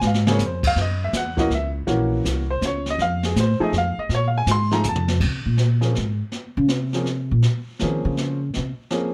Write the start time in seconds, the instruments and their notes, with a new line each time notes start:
0.01 upright bass G#2, snare
0.07 upright piano F5
0.14 snare
0.27 upright piano C#3 A#3 C4 G#4, snare
0.32 upright piano C#5
0.39 upright bass F2, snare, hi-hat pedal
0.46 upright piano C5
0.63 upright piano F5, kick, crash
0.76 upright bass F#2, brush sweep, kick, snare
0.81 upright piano D#5
1.04 upright piano E5
1.13 upright bass E2, upright piano F#5, kick, snare, hi-hat pedal
1.37 upright piano E3 A#3 C#4 F#4 D#5, kick, snare
1.50 upright bass C#2, kick, snare
1.55 upright piano E5
1.87 upright bass A#1, upright piano E3 A#3 C#4 F#4, brush sweep, kick, snare
2.25 upright bass C2, kick, snare, hi-hat pedal
2.50 upright piano C5
2.61 upright bass C#2, kick, snare, hi-hat pedal
2.65 upright piano C#5
2.86 snare
2.90 upright piano D#5
2.98 upright bass F2, upright piano F5, brush sweep, kick, snare
3.23 upright piano G#4, snare
3.35 upright bass A2, kick, snare, hi-hat pedal
3.40 upright piano C5
3.60 upright piano F3 A3 D#4 G#4 D#5, muted upright bass stroke
3.72 upright bass F2, kick, snare
3.78 upright piano F5
3.98 upright piano D#5, muted upright bass stroke
4.09 upright bass A#2, brush sweep, kick, snare
4.15 upright piano C#5
4.28 upright piano F5
4.38 upright piano G#5
4.46 upright bass G#2, kick, snare, hi-hat pedal
4.51 upright piano C6
4.71 upright piano F3 A3 D#4 G#4 A#5, snare
4.84 upright bass F2, upright piano G#5, hi-hat pedal, mid tom
4.89 upright piano A5
4.95 mid tom
5.08 snare
5.20 upright bass C3, brush sweep, kick, snare, crash
5.46 upright bass A#2
5.57 snare
5.81 upright piano F3 A#3 C4 C#4 G#4, snare
5.95 upright bass G#2, snare
6.32 brush sweep, snare
6.57 upright bass C#3
6.68 upright bass C3, snare
6.93 upright piano F3 A#3 C4 C#4 G#4, snare
7.06 snare
7.31 upright bass A#2
7.42 brush sweep, snare
7.79 upright bass D#3, upright piano F3 A#3 C4 C#4 G#4, snare
8.05 upright bass C#3
8.17 snare
8.54 upright bass C3, brush sweep, snare
8.90 upright piano F3 A#3 C4 C#4 G#4, snare